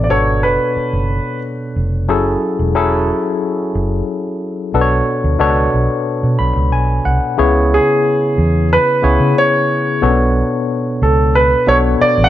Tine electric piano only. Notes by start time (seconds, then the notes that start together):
Already playing: B2 B3 D4 A4 D5
0.09 B2 B3 D4 A4 C#5
2.08 F#3 C#4 E4 G#4 A4
2.75 F#3 C#4 E4 G#4 A4
4.74 B2 B3 D4 A4 B4
4.81 C#5
5.39 B2 B3 D4 A4 C#5
6.39 B5
6.72 G#5
7.05 F#5
7.38 C#3 B3 E4 G#4 C#5
9.02 C#3 B3 E4 G#4 C#5
10.02 B2 B3 C#4 A4 C#5
10.09 D4
11.67 B2 B3 D4 A4 C#5